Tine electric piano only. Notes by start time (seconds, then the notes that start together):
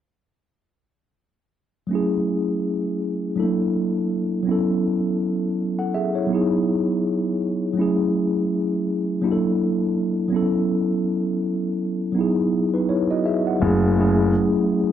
1.87 F#3 A3
1.91 C#4 E4
1.95 G#4
3.36 F#3 A3 D4 E4 A4
3.43 A#3
4.43 F#3 B3 C#4
4.49 E4 A4
5.79 A4 F#5
5.94 G#4 E5
6.15 E4 C#5
6.27 F#3 B3 D#4
6.33 E4 G#4
7.73 F#3 A3
7.77 C#4 E4
7.82 G#4
9.21 F#3 A#3 D4 E4
9.25 G4
9.32 A4
10.28 F#3 B3
10.32 C#4 E4 A4
12.12 F#3 B3 D#4
12.18 E4 G#4
12.74 D#4 B4
12.89 E4 C#5
13.11 F#4 D#5
13.26 G#4 E5
13.47 F#5
13.60 F#3 A3 C#4 E4
13.64 G#4
13.97 F#3 A3 C#4 E4 G#4